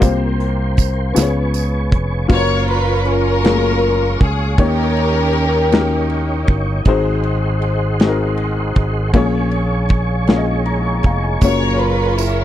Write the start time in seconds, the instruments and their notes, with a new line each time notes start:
Already playing: tonewheel organ G5
0.00 fingered electric bass C2, upright piano C3 A#3 F4 G4 C5, tonewheel organ A#4 C6, kick, closed hi-hat, tambourine
0.40 closed hi-hat
0.77 kick, closed hi-hat, tambourine
1.13 fingered electric bass C#2, upright piano C#3 B3 F4 G#4 C5, tonewheel organ B4 G#5 C#6, closed hi-hat, tambourine
1.18 snare
1.22 upright piano C#5
1.54 closed hi-hat, tambourine
1.92 fingered electric bass F1, kick, closed hi-hat
2.28 fingered electric bass F#1, upright piano A#2 F#3 C#4 F4 B4, string section F4 A#4, tonewheel organ C#5 F5 C#6, kick, crash
2.32 string section C#5, upright piano C#5
2.68 string section B4, ride
3.05 string section C#4 F4 A#4, ride
3.43 upright piano F#3 A3 C#4 F4 G#4, snare, ride
3.49 upright piano A#3
3.82 ride
4.21 fingered electric bass C#2, string section G#4, kick, ride
4.58 fingered electric bass D#2, upright piano D#3 A#3 C#4 D#4 G4 C#5, string section C#4 G4 A#4, tonewheel organ D#5 G5, kick, ride
4.97 ride
5.33 ride
5.72 upright piano A#3 C#4 D#4 F#4 A#4, snare, ride
5.81 upright piano G4
6.10 ride
6.47 fingered electric bass G1, kick, ride
6.85 fingered electric bass G#1, upright piano G#2 G#3 C4 D#4 F#4 C5, tonewheel organ G#4 F#5 C6, kick, ride
7.23 ride
7.62 ride
8.00 upright piano G#3 C4 D#4 F#4 G#4, snare, ride
8.08 upright piano A#4
8.37 ride
8.76 fingered electric bass G#1, kick, ride
9.13 fingered electric bass A#1, upright piano A#2 A#3 C#4 F4 G#4 C#5, tonewheel organ G#4 C#5 G#5 C#6, kick, ride
9.51 ride
9.89 kick, ride
10.27 upright piano A#3 C#4 F4 G#4 C#5, snare, ride
10.37 upright piano D#5
10.66 upright piano A#5, ride
10.86 upright piano C#6
11.03 fingered electric bass F1, upright piano F5 A#5, kick, ride
11.23 upright piano G#5
11.41 fingered electric bass F#1, upright piano A#2 F#3 C#4 F4 C#5, string section F4 A#4 C#5, kick, ride, tambourine
11.79 string section B4, ride
12.18 string section C#4 E4 A#4, ride, tambourine